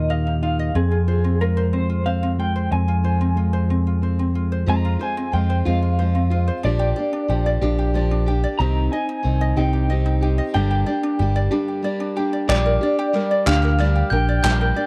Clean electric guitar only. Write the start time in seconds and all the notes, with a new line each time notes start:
Already playing: D#5
0.10 F5
0.43 F5
0.76 G#4
1.41 A#4
1.73 C5
2.06 F5
2.40 G5
2.72 G#5
4.70 A#5
5.03 G#5
5.34 G5
5.66 F5
6.65 D5
8.59 A#5
8.92 G#5
9.57 G5
10.54 G5
12.49 D5
13.47 F5
14.13 G5
14.44 G5